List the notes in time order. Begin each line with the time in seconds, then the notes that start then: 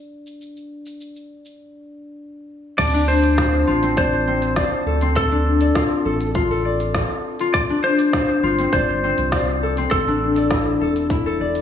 Already playing: D4 D5
0.27 cabasa
0.41 cabasa
0.57 cabasa
0.86 cabasa
1.01 cabasa
1.16 cabasa
1.46 cabasa
2.78 D2 C4 D5 A5, kick, open hi-hat, crash, cabasa
2.94 D4, cabasa
3.08 C5
3.24 open hi-hat, cabasa
3.38 kick, snare, open hi-hat, cabasa
3.53 cabasa
3.67 A1 F4
3.83 C4, open hi-hat, cabasa
3.97 C5 D5, kick, open hi-hat, cabasa
4.13 C5, cabasa
4.27 C4
4.42 open hi-hat, cabasa
4.56 D5, kick, snare, open hi-hat, cabasa
4.72 cabasa
4.86 D2 A4
5.01 C4, open hi-hat, cabasa
5.16 A4, kick, open hi-hat, cabasa
5.31 D4, cabasa
5.61 D5, open hi-hat, cabasa
5.75 F4, kick, snare, open hi-hat, cabasa
5.91 cabasa
6.05 A1 A4
6.21 open hi-hat, cabasa
6.35 F4, kick, open hi-hat, cabasa
6.51 A4, cabasa
6.65 D5
6.80 open hi-hat, cabasa
6.95 kick, snare, open hi-hat, cabasa
7.10 cabasa
7.39 F4, open hi-hat, cabasa
7.54 D5, kick, open hi-hat, cabasa
7.70 D4, cabasa
7.84 C5
7.99 open hi-hat, cabasa
8.13 kick, snare, open hi-hat, cabasa
8.29 cabasa
8.43 G1 F4
8.59 C4, open hi-hat, cabasa
8.73 G1 C5 D5, kick, open hi-hat, cabasa
8.88 C5, cabasa
9.04 C4
9.18 C2, open hi-hat, cabasa
9.32 D5, kick, snare, open hi-hat, cabasa
9.48 cabasa
9.63 A4
9.77 C4, open hi-hat, cabasa
9.91 A1 A4, kick, open hi-hat, cabasa
10.07 D4, cabasa
10.36 D5, open hi-hat, cabasa
10.51 E4, kick, snare, open hi-hat, cabasa
10.66 cabasa
10.81 E1 A4
10.96 open hi-hat, cabasa
11.10 E4, kick, open hi-hat, cabasa
11.26 A4, cabasa
11.40 E1 D5
11.55 open hi-hat, cabasa